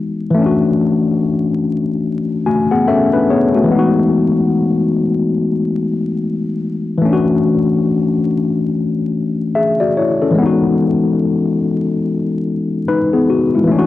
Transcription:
0.00 0.29 E3 medium
0.00 0.31 G#3 medium
0.00 0.33 B3 medium
0.00 0.35 D#4 medium
0.00 0.37 F#4 medium
0.30 3.63 E3 medium
0.30 2.40 A3 medium
0.38 2.42 C#4 medium
0.38 2.44 D4 medium
0.46 2.45 F#4 medium
2.46 2.70 A3 soft
2.46 2.69 F#4 medium
2.46 2.69 G#5 medium
2.71 2.87 B3 medium
2.71 2.87 G#4 medium
2.71 2.86 F#5 medium
2.88 3.11 C#4 medium
2.88 3.11 A4 medium
2.88 3.26 E5 medium
3.13 3.29 D4 medium
3.13 3.28 B4 medium
3.30 3.53 B3 medium
3.30 3.53 G#4 medium
3.30 3.68 C#5 medium
3.55 3.94 A3 medium
3.55 3.77 F#4 medium
3.64 6.96 E3 medium
3.68 6.98 G#3 medium
3.68 7.00 B3 medium
3.75 7.02 D#4 medium
3.75 7.04 F#4 medium
6.98 10.29 E3 medium
6.98 10.32 A3 medium
7.05 9.50 C#4 medium
7.05 9.52 D4 medium
7.13 9.54 F#4 medium
9.55 9.78 G#4 medium
9.55 9.78 E5 medium
9.80 9.95 F#4 medium
9.80 9.95 D5 medium
9.97 10.20 E4 soft
9.97 10.20 C#5 medium
10.22 10.61 C#4 soft
10.22 10.60 A4 medium
10.31 13.63 E3 medium
10.31 12.81 G#3 medium
10.38 12.83 B3 medium
10.38 12.85 D#4 medium
10.46 12.87 F#4 medium
12.88 13.11 D#4 medium
12.88 13.11 B4 medium
13.13 13.29 B3 medium
13.13 13.28 G#4 medium
13.30 13.53 F#4 medium
13.55 13.87 G#3 medium
13.55 13.87 E4 medium
13.64 13.87 E3 medium
13.64 13.87 A3 medium
13.72 13.87 C#4 medium
13.72 13.87 D4 medium
13.79 13.87 F#4 medium

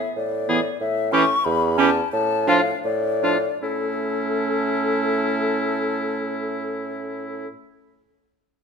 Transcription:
0.00 0.16 E5 loud
0.16 0.70 A2 loud
0.16 0.80 D5 loud
0.49 0.60 E3 medium
0.49 0.60 B3 medium
0.49 0.60 G#4 medium
0.81 1.35 A2 loud
0.81 1.14 E5 loud
1.12 1.24 E3 loud
1.12 1.24 C#4 loud
1.12 1.25 G4 medium
1.12 1.46 C#6 loud
1.45 2.01 E2 loud
1.45 1.79 B5 loud
1.78 1.90 E3 loud
1.78 1.90 C#4 loud
1.78 1.91 G4 loud
1.78 2.11 A5 loud
2.12 2.73 A2 loud
2.12 2.50 A5 loud
2.47 2.60 F3 loud
2.47 2.61 D4 loud
2.47 2.61 F4 loud
2.47 2.83 F5 loud
2.84 3.50 A2 loud
2.84 3.61 D5 loud
3.22 3.37 F3 medium
3.22 3.37 D4 medium
3.22 3.37 F4 medium
3.61 7.48 A2 medium
3.61 7.47 A3 medium
3.61 7.48 C#4 medium
3.61 7.48 E4 medium
3.61 7.48 A4 loud

